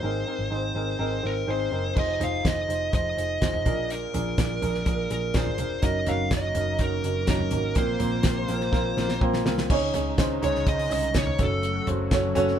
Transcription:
Already playing: lead electric guitar C5
0.03 picked electric bass G#1, upright piano G#2 C4 D#4 G#4 A#4
0.26 upright piano C4 D#4 G#4 A#4
0.39 picked electric bass G#1
0.50 picked electric bass G#1, upright piano C4 D#4 G#4 C5
0.75 picked electric bass G#1, upright piano C4 D#4 G#4 A#4
0.99 picked electric bass G#1, upright piano C4 D#4 G#4 A#4
1.22 picked electric bass G#1, upright piano C4 D#4 G#4 C5
1.27 lead electric guitar A#4
1.47 picked electric bass G#1, upright piano C4 D#4 G#4 C5, lead electric guitar C5
1.71 picked electric bass F#1, upright piano C4 D#4 G#4 A#4
1.95 picked electric bass F1, upright piano D#4 F4 G#4 C5, kick, crash
1.99 lead electric guitar D#5
2.19 picked electric bass F1, upright piano D#4 F4 G#4 C5, lead electric guitar F5, closed hi-hat, floor tom
2.43 picked electric bass F1, upright piano D#4 F4 G#4 C5, lead electric guitar D#5, kick, snare, closed hi-hat
2.68 picked electric bass F1, upright piano D#4 F4 G#4 C5, closed hi-hat
2.92 picked electric bass F1, upright piano D#4 F4 G#4 C5, lead electric guitar D#5, kick, closed hi-hat
3.17 picked electric bass F1, upright piano D#4 F4 G#4 C5, closed hi-hat
3.42 picked electric bass F1, upright piano D#4 F4 G#4 C5, kick, snare, closed hi-hat
3.54 floor tom
3.65 picked electric bass A#1, upright piano A#2 D4 F4 G#4 A#4, kick, closed hi-hat, floor tom
3.90 lead electric guitar A#4, closed hi-hat
4.13 picked electric bass A#1, upright piano D4 F4 G#4 A#4, closed hi-hat, floor tom
4.38 picked electric bass A#1, upright piano D4 F4 G#4 A#4, kick, snare, closed hi-hat
4.62 picked electric bass A#1, upright piano D4 F4 G#4 A#4, closed hi-hat, floor tom
4.74 snare
4.85 picked electric bass A#1, upright piano D4 F4 G#4 A#4, kick, closed hi-hat
5.10 picked electric bass A#1, upright piano D4 F4 G#4 A#4, lead electric guitar A#4, closed hi-hat
5.34 picked electric bass A#1, upright piano D4 F4 G#4 A#4, lead electric guitar C5, kick, snare, closed hi-hat
5.46 floor tom
5.58 picked electric bass F1, upright piano D4 F4 G#4 A#4, closed hi-hat, floor tom
5.82 picked electric bass F#1, analog synth pad C#3 F#3 A#3 D#4, upright piano C#4 D#4 F#4 A#4, lead electric guitar D#5, kick, closed hi-hat
6.06 picked electric bass F#1, upright piano C#4 D#4 F#4 A#4, lead electric guitar F5, closed hi-hat, floor tom
6.31 picked electric bass F#1, upright piano C#4 D#4 F#4 C#5, lead electric guitar D#5, kick, snare, closed hi-hat
6.55 picked electric bass F#1, upright piano C#4 D#4 F#4 A#4, closed hi-hat, floor tom
6.79 picked electric bass F#1, upright piano C#4 D#4 F#4 A#4, lead electric guitar A#4, kick, closed hi-hat
7.04 picked electric bass F#1, upright piano C#4 D#4 F#4 A#4, closed hi-hat
7.27 picked electric bass F#1, upright piano C#4 D#4 F#4 A#4, lead electric guitar A#4, kick, snare, closed hi-hat
7.39 floor tom
7.51 picked electric bass G#1, upright piano C#4 D#4 F#4 A#4, closed hi-hat, floor tom
7.75 picked electric bass A#1, upright piano A#2 A#3 C4 F4 A#4, analog synth pad C3 F3 F4, lead electric guitar C5, kick, closed hi-hat
7.99 picked electric bass A#1, upright piano A#3 C4 F4 C5, closed hi-hat, floor tom
8.23 picked electric bass A#1, upright piano A#3 C4 F4 A#4, kick, snare, closed hi-hat
8.48 picked electric bass A#1, upright piano A#3 C4 F4 A#4, closed hi-hat
8.60 snare
8.72 picked electric bass A#1, upright piano A#3 C4 F4 A#4, kick, snare
8.97 picked electric bass A#1, upright piano A#3 C4 F4 A#4, snare
9.09 snare
9.21 picked electric bass A#1, upright piano A#3 C4 F4 C5, kick
9.34 snare
9.45 picked electric bass C2, upright piano A#3 C4 F4 A#4, snare
9.58 snare
9.70 picked electric bass C#2, analog synth pad C#3 D#3 G#3 D#4, upright piano C#3 C#4 D#4 G#4 C#5, kick, crash
9.94 picked electric bass C#2, upright piano C#4 D#4 G#4 C#5, floor tom, hi-hat pedal, open hi-hat
10.18 picked electric bass C#2, upright piano C#4 D#4 G#4 C5, kick, snare, hi-hat pedal, open hi-hat
10.42 picked electric bass C2, upright piano C#4 D#4 G#4 C#5, lead electric guitar C#5, floor tom, hi-hat pedal, open hi-hat
10.55 snare
10.66 picked electric bass C#2, upright piano C#4 D#4 G#4 D#5, lead electric guitar D#5, kick, hi-hat pedal, open hi-hat
10.79 open hi-hat
10.89 picked electric bass C2, upright piano C#4 D#4 G#4 C#5, lead electric guitar D#5, hi-hat pedal, open hi-hat
11.02 hi-hat pedal
11.14 picked electric bass C#2, upright piano C#4 D#4 G#4 C#5, kick, snare, hi-hat pedal, open hi-hat
11.18 lead electric guitar C#5
11.27 floor tom
11.38 picked electric bass F#1, analog synth pad F#3 A3 F#4, upright piano C#4 F#4 A4 C#5, kick, floor tom, hi-hat pedal, open hi-hat
11.43 lead electric guitar A4
11.63 hi-hat pedal, open hi-hat
11.87 picked electric bass F#1, upright piano C#4 F#4 A4 C5, floor tom, hi-hat pedal, open hi-hat
12.11 picked electric bass F#1, upright piano C#4 F#4 A4 C#5, kick, snare, hi-hat pedal, open hi-hat
12.35 picked electric bass F#1, upright piano C#4 F#4 A4 C#5, floor tom, hi-hat pedal, open hi-hat
12.48 snare

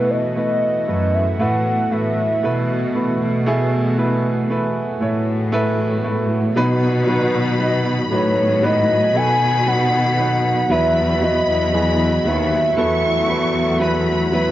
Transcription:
Already playing: cello section B2, grand piano B2 A3 E4 B4, analog synth pad E3 A3 B3 F#4, soft synth lead B4
0.10 soft synth lead D#5
0.36 grand piano A3 E4 B4
0.87 cello section F#2, grand piano A3 E4 B4
1.14 soft synth lead E5
1.39 cello section A2, grand piano A3 E4 B4, soft synth lead F#5
1.91 cello section A2, grand piano A3 E4 B4, soft synth lead E5
2.43 cello section B2, grand piano B2 A3 E4 B4
2.95 grand piano A3 E4 B4
3.20 cello section B2
3.46 grand piano A3 E4 G#4
3.97 grand piano A3 E4 B4
4.50 grand piano A3 E4 B4
5.01 cello section A2, grand piano A3 E4 C#5
5.52 grand piano A3 E4 B4
6.04 grand piano A3 E4 B4
6.56 grand piano B2 F#3 B3 D#4 B4, cello section B2, analog synth pad D#3 F#3 B3 F#4, violin section B5
7.07 grand piano F#3 B3 D#4 B4
7.59 grand piano F#3 B3 D#4 B4, soft synth lead D#5
8.11 cello section A2, grand piano F#3 B3 D#4 B4, soft synth lead C#5
8.62 grand piano F#3 B3 D#4 B4, soft synth lead D#5, analog synth pad G#5, violin section B5
9.15 cello section B2, grand piano F#3 B3 D#4 A4, soft synth lead G#5
9.66 grand piano F#3 B3 D#4 B4, soft synth lead F#5
10.18 grand piano F#3 B3 D#4 B4, soft synth lead F#5
10.70 cello section E2, grand piano F#3 B3 E4 B4, analog synth pad B3 E4 F#4, soft synth lead E5, violin section B5
11.21 grand piano F#3 B3 E4 B4, soft synth lead D#5
11.48 cello section E2
11.73 grand piano F#3 B3 E4 G#4
12.25 cello section D#2, grand piano F#3 B3 E4 B4, soft synth lead E5
12.77 cello section E2, grand piano F#3 B3 E4 A4, analog synth pad A3, violin section C#6
13.28 grand piano F#3 B3 E4 B4
13.80 grand piano F#3 B3 E4 B4, violin section B5
14.32 grand piano F#3 B3 E4 B4

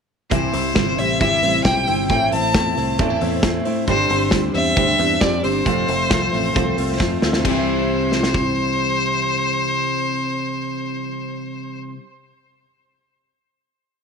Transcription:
0.30 fingered electric bass C2, steel-string acoustic guitar C3 E3 G3 C4 E4 C5, violin C5, kick, closed hi-hat
0.53 fingered electric bass C2, steel-string acoustic guitar G3 C4 E4 C5, open hi-hat
0.74 fingered electric bass G1, steel-string acoustic guitar G3 C4 E4 C5, kick, snare, closed hi-hat
0.97 fingered electric bass A1, steel-string acoustic guitar G3 C4 E4 C5, violin E5, open hi-hat
1.19 fingered electric bass G1, steel-string acoustic guitar C3 E3 G3 C4 E4 C5, violin E5, kick, closed hi-hat
1.42 fingered electric bass A1, steel-string acoustic guitar G3 C4 E4 C5, open hi-hat
1.65 fingered electric bass B1, steel-string acoustic guitar G3 C4 E4 C5, violin G5, kick, snare, closed hi-hat
1.87 fingered electric bass G1, steel-string acoustic guitar G3 C4 E4 C5, open hi-hat
2.09 fingered electric bass A1, steel-string acoustic guitar A2 E3 A3 C4 E4 C5, violin G5, kick, closed hi-hat
2.32 fingered electric bass A1, steel-string acoustic guitar A3 C4 E4 C5, violin A5, open hi-hat
2.54 fingered electric bass E2, steel-string acoustic guitar A3 C4 E4 C5, kick, snare, closed hi-hat
2.77 fingered electric bass C2, steel-string acoustic guitar A3 C4 E4 C5, open hi-hat
2.99 fingered electric bass E2, steel-string acoustic guitar A2 E3 A3 C4 E4 C5, clean electric guitar D4, kick, closed hi-hat
3.10 clean electric guitar E4
3.21 fingered electric bass E2, steel-string acoustic guitar A3 C4 E4 C5, open hi-hat
3.43 steel-string acoustic guitar A3 C4 E4, kick, snare, closed hi-hat
3.47 steel-string acoustic guitar C5
3.65 steel-string acoustic guitar A3 C4 E4 C5, open hi-hat
3.87 fingered electric bass G1, clean electric guitar G2, steel-string acoustic guitar G3 D4 G4 C5, violin C5, kick, closed hi-hat
4.10 fingered electric bass G1, clean electric guitar C4, steel-string acoustic guitar D4 G4 C5, open hi-hat
4.31 fingered electric bass D2, steel-string acoustic guitar G3 D4 G4 C5, kick, snare, closed hi-hat
4.54 fingered electric bass E2, clean electric guitar C4, steel-string acoustic guitar D4 G4 C5, violin E5, open hi-hat
4.76 fingered electric bass D2, steel-string acoustic guitar G3 D4 G4 C5, clean electric guitar C4, kick, closed hi-hat
4.88 clean electric guitar D4
4.98 fingered electric bass E2, clean electric guitar C4, steel-string acoustic guitar D4 G4 C5, open hi-hat
5.21 fingered electric bass F2, steel-string acoustic guitar G3 D4 G4 C5, violin D5, kick, snare, closed hi-hat
5.43 fingered electric bass G1, clean electric guitar C4, steel-string acoustic guitar D4 G4 C5, violin C5, open hi-hat
5.66 fingered electric bass F1, clean electric guitar F2, steel-string acoustic guitar F3 A3 C4 F4 C5, kick, closed hi-hat
5.88 fingered electric bass F1, clean electric guitar A3, steel-string acoustic guitar C4 F4 C5, open hi-hat
6.10 fingered electric bass C2, clean electric guitar F3, steel-string acoustic guitar A3 C4 F4 C5, kick, snare, closed hi-hat
6.32 fingered electric bass A1, clean electric guitar A3, steel-string acoustic guitar C4 F4 C5, open hi-hat
6.54 fingered electric bass C2, steel-string acoustic guitar F3 A3 C4 F4 C5, kick, closed hi-hat
6.77 fingered electric bass C2, clean electric guitar A3, steel-string acoustic guitar C4 F4 C5, open hi-hat
6.99 fingered electric bass F2, clean electric guitar F3, steel-string acoustic guitar A3 C4 F4 C5, kick, snare
7.22 fingered electric bass D2, clean electric guitar A3, steel-string acoustic guitar C4 F4 C5, snare
7.33 snare
7.39 steel-string acoustic guitar C3
7.43 fingered electric bass C2, clean electric guitar C3, steel-string acoustic guitar E3, violin C5, kick, crash
7.48 steel-string acoustic guitar G3 C4
7.54 steel-string acoustic guitar E4 C5
8.12 snare
8.23 snare
8.34 kick

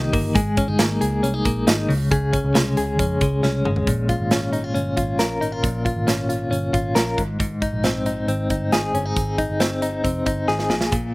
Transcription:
Already playing: clean electric guitar D#3 A#3 D#4 G4
0.13 picked electric bass G1, clean electric guitar A#3, kick, open hi-hat
0.35 picked electric bass G#1, clean electric guitar G#3 G#4, kick, closed hi-hat
0.57 clean electric guitar C#4, kick, closed hi-hat
0.68 picked electric bass G1, clean electric guitar D#4
0.79 picked electric bass G#1, clean electric guitar A#3, snare, closed hi-hat
1.01 picked electric bass C#2, clean electric guitar G#4, closed hi-hat
1.23 picked electric bass C2, clean electric guitar C#4, closed hi-hat
1.34 clean electric guitar D#4
1.45 picked electric bass A#1, clean electric guitar A#3, kick, closed hi-hat
1.67 picked electric bass G#1, clean electric guitar D#4, snare, closed hi-hat
1.89 picked electric bass C#2, clean electric guitar C#3, open hi-hat
2.11 clean electric guitar C#3 G#4, kick, closed hi-hat
2.33 clean electric guitar C#4, kick, closed hi-hat
2.45 picked electric bass C#2
2.54 picked electric bass C2, clean electric guitar G#3, snare, closed hi-hat
2.77 picked electric bass C#2, clean electric guitar G#4, closed hi-hat
2.99 picked electric bass F2, clean electric guitar C#4, kick, closed hi-hat
3.21 picked electric bass C#2, clean electric guitar G#3, kick, closed hi-hat
3.43 picked electric bass C2, clean electric guitar C#4, snare
3.65 picked electric bass G#1, clean electric guitar G#3, mid tom
3.76 floor tom
3.87 picked electric bass A#1, clean electric guitar A#2, kick, closed hi-hat
4.09 clean electric guitar F4, kick, closed hi-hat
4.20 picked electric bass G#1
4.31 clean electric guitar C#4, snare, closed hi-hat
4.53 clean electric guitar D#4, closed hi-hat
4.64 clean electric guitar F4
4.74 picked electric bass G1, clean electric guitar C#4, closed hi-hat
4.97 picked electric bass G#1, clean electric guitar F4, kick, closed hi-hat
5.19 picked electric bass A#1, clean electric guitar A#4, snare, closed hi-hat
5.41 picked electric bass G#1, clean electric guitar D#4, closed hi-hat
5.52 clean electric guitar F4
5.63 picked electric bass A#1, clean electric guitar A#2, kick, closed hi-hat
5.85 clean electric guitar F4, kick, closed hi-hat
5.97 picked electric bass G#1
6.07 clean electric guitar C#4, snare, closed hi-hat
6.29 clean electric guitar F4, closed hi-hat
6.51 picked electric bass G1, clean electric guitar C#4, closed hi-hat
6.73 picked electric bass G#1, clean electric guitar F4, kick, closed hi-hat
6.95 picked electric bass A#1, clean electric guitar A#4, snare, closed hi-hat
7.18 picked electric bass G#1, clean electric guitar G#2, kick, closed hi-hat
7.40 clean electric guitar G#2, kick, closed hi-hat
7.62 clean electric guitar D#4, kick, closed hi-hat
7.72 picked electric bass A#1
7.84 clean electric guitar C4, snare, closed hi-hat
8.06 clean electric guitar D#4, closed hi-hat
8.28 picked electric bass G#1, clean electric guitar C4, closed hi-hat
8.50 picked electric bass G1, clean electric guitar D#4, kick, closed hi-hat
8.72 picked electric bass G#1, clean electric guitar G#4, snare, closed hi-hat
8.95 picked electric bass G1, clean electric guitar C#4, closed hi-hat
9.05 clean electric guitar D#4
9.16 picked electric bass G#1, kick, closed hi-hat
9.38 clean electric guitar D#4, kick, closed hi-hat
9.50 picked electric bass G1
9.60 clean electric guitar C4, snare, closed hi-hat
9.82 clean electric guitar D#4, closed hi-hat
10.04 picked electric bass F1, clean electric guitar C4, kick, closed hi-hat
10.26 picked electric bass G1, clean electric guitar D#4, kick, closed hi-hat
10.48 picked electric bass G#1, clean electric guitar G#4, snare
10.59 snare
10.69 picked electric bass A#1, clean electric guitar A#2, snare
10.81 snare
10.92 clean electric guitar A#2, kick, closed hi-hat

